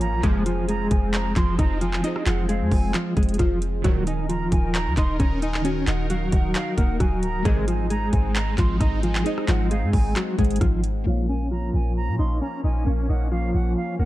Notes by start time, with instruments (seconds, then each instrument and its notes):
Already playing: clean electric guitar F3 F4, analog synth pad F3 A#3 C#4, synth keys A#3 A#4 C#5 F5, downlifter
0.01 808-style bass G#1, flute A#5, closed hi-hat
0.13 808-style bass A#1
0.20 808-style bass F1, analog polysynth G#2 C3 F3, synth keys F3 F4 G#4, analog synth pad G#3 C4, clean electric guitar G#3 G#4, kick, closed hi-hat
0.26 synth keys C5
0.46 clean electric guitar F3 F4, flute G#5, closed hi-hat
0.68 clean electric guitar G#3 G#4, flute A#5, closed hi-hat
0.91 808-style bass F1, flute G#5, kick, closed hi-hat
1.14 flute A#5, clap, closed hi-hat
1.36 808-style bass F1, clean electric guitar F3 F4, flute C6, kick, clap, closed hi-hat
1.58 808-style bass F1, clean electric guitar D#4 D#5, flute A#5, kick, cross-stick, closed hi-hat
1.81 clean electric guitar F3 F4, flute G#5, closed hi-hat
1.93 clap
2.02 synth keys F3 F4 G#4, clean electric guitar D#4 D#5, closed hi-hat
2.07 synth keys C5
2.16 cross-stick
2.26 808-style bass F1, clean electric guitar F3 F4, flute F#5, clap, closed hi-hat
2.49 clean electric guitar G#3 G#4, flute F5, closed hi-hat
2.61 808-style bass F2
2.71 808-style bass F1, flute G#5, kick, open hi-hat
2.94 clean electric guitar F3 F4, clap, closed hi-hat
3.17 808-style bass F1, clean electric guitar G#3 G#4, kick, closed hi-hat
3.23 closed hi-hat
3.29 closed hi-hat
3.34 closed hi-hat
3.38 808-style bass F1, synth keys F3 F4 G#4 C5, clean electric guitar F3 F4, kick, cross-stick, closed hi-hat
3.62 closed hi-hat
3.82 808-style bass D#1, analog polysynth A#2 D#3 F#3, synth keys D#3 D#4, analog synth pad D#3 D#4 A#4, clean electric guitar F#3 F#4, kick, closed hi-hat
3.87 synth keys A#4
4.07 clean electric guitar D#4 D#5, flute G#5, closed hi-hat
4.29 clean electric guitar F3 F4, flute A#5, closed hi-hat
4.52 808-style bass D#1, flute G#5, kick, closed hi-hat
4.75 flute A#5, clap, closed hi-hat
4.87 808-style bass D#2
4.97 808-style bass D#1, clean electric guitar D#4 D#5, flute C6, kick, clap, closed hi-hat
5.19 808-style bass D#1, clean electric guitar C#4 C#5, flute A#5, kick, cross-stick, closed hi-hat
5.42 clean electric guitar D#4 D#5, flute G#5, closed hi-hat
5.54 clap
5.62 synth keys D#3 D#4 F#4, clean electric guitar C#4 C#5, closed hi-hat
5.67 synth keys A#4
5.87 808-style bass D#1, clean electric guitar D#4 D#5, flute F#5, clap, closed hi-hat
6.10 clean electric guitar F#3 F#4, flute F5, closed hi-hat
6.32 808-style bass D#1, flute F#5, kick, closed hi-hat
6.55 flute F5, clap, closed hi-hat
6.77 808-style bass D#1, clean electric guitar A#3 A#4, flute F#5, kick, closed hi-hat
7.00 808-style bass D#1, clean electric guitar F#3 F#4, flute G#5, kick, cross-stick, closed hi-hat
7.22 808-style bass C#1, flute A#5, closed hi-hat
7.35 808-style bass D#1
7.43 808-style bass G#1, analog polysynth C3 D#3 G#3, synth keys G#3 G#4 C5, analog synth pad G#3 C4 D#4, clean electric guitar G#3 G#4, kick, closed hi-hat
7.48 synth keys D#5
7.68 clean electric guitar F3 F4, flute G#5, closed hi-hat
7.90 clean electric guitar G#3 G#4, flute A#5, closed hi-hat
8.13 808-style bass G#1, flute G#5, kick, closed hi-hat
8.35 flute A#5, clap, closed hi-hat
8.58 808-style bass G#1, clean electric guitar F3 F4, flute C6, kick, clap, closed hi-hat
8.80 808-style bass G#1, clean electric guitar D#4 D#5, flute A#5, kick, cross-stick, closed hi-hat
9.03 clean electric guitar F3 F4, flute G#5, closed hi-hat
9.15 clap
9.23 synth keys G#3 G#4 C5, clean electric guitar D#4, closed hi-hat
9.27 clean electric guitar D#5, synth keys D#5
9.38 cross-stick
9.48 808-style bass G#1, clean electric guitar F3 F4, flute F#5, clap, closed hi-hat
9.71 clean electric guitar G#3 G#4, flute F5, closed hi-hat
9.83 808-style bass G#2
9.93 808-style bass G#1, flute G#5, kick, open hi-hat
10.16 clean electric guitar F#3 F#4, clap, closed hi-hat
10.37 808-style bass G#1, synth keys G#3 G#4 C5 F#5, clean electric guitar G#3 G#4, kick, closed hi-hat
10.44 closed hi-hat
10.51 closed hi-hat
10.56 closed hi-hat
10.61 808-style bass G#1, clean electric guitar F3 F4, kick, cross-stick, closed hi-hat
10.84 closed hi-hat
11.04 808-style bass A#1, analog synth pad F3 A#3 C#4, clean electric guitar F3 F4, synth keys A#3 A#4 C#5
11.09 synth keys F5
11.29 clean electric guitar C#4 C#5, flute G#5
11.51 clean electric guitar F3 F4, flute A#5
11.74 808-style bass A#1, flute G#5
11.96 flute A#5
12.08 808-style bass A#2
12.19 808-style bass A#1, clean electric guitar D#4 D#5, flute C6
12.42 clean electric guitar C#4 C#5, flute A#5
12.64 808-style bass A#1, clean electric guitar D#4 D#5, flute G#5
12.84 808-style bass A#1, synth keys A#3 A#4 C#5, clean electric guitar C#4 C#5
12.90 synth keys F5
13.09 808-style bass A#1, clean electric guitar D#4 D#5, flute F#5
13.31 clean electric guitar F3 F4, flute F5
13.54 808-style bass A#1, flute F#5
13.77 flute F5
13.99 808-style bass A#1, clean electric guitar A#3 A#4, flute F#5